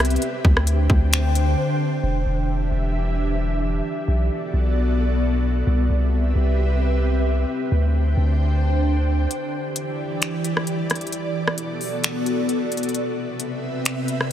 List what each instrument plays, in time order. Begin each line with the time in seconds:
Already playing: 808-style bass C2, ambient pad C4 G4 B4 E5
0.00 cross-stick
0.05 closed hi-hat
0.10 closed hi-hat
0.16 closed hi-hat
0.22 ambient pad D3 D4 C5 G5, closed hi-hat
0.45 808-style bass D2, kick
0.57 cross-stick
0.67 closed hi-hat
0.90 808-style bass D2, kick
1.13 finger snap, closed hi-hat
1.35 closed hi-hat
2.03 808-style bass E1, ambient pad E3 D4 G4 E5
2.26 808-style bass E1
2.72 808-style bass E1
3.85 ambient pad B3 F#4 A4 D5
4.08 808-style bass B1
4.53 808-style bass B1
5.67 808-style bass C2, ambient pad C4 G4 B4 E5
5.90 808-style bass C2
6.35 808-style bass C2
7.49 ambient pad D3 D4 C5 G5
7.72 808-style bass D2
8.17 808-style bass D2
9.31 ambient pad E3 E4 G4 D5, closed hi-hat
9.76 closed hi-hat
10.22 finger snap, closed hi-hat
10.44 closed hi-hat
10.57 cross-stick
10.67 closed hi-hat
10.90 cross-stick, closed hi-hat
10.96 closed hi-hat
11.01 closed hi-hat
11.07 closed hi-hat
11.12 ambient pad B3 F#4 A4, closed hi-hat
11.47 cross-stick
11.58 closed hi-hat
11.81 open hi-hat
12.04 finger snap, closed hi-hat
12.26 closed hi-hat
12.49 closed hi-hat
12.72 closed hi-hat
12.77 closed hi-hat
12.83 closed hi-hat
12.89 closed hi-hat
12.94 ambient pad C3 C4 B4 E5, closed hi-hat
13.40 closed hi-hat
13.85 finger snap, closed hi-hat
14.08 closed hi-hat
14.21 cross-stick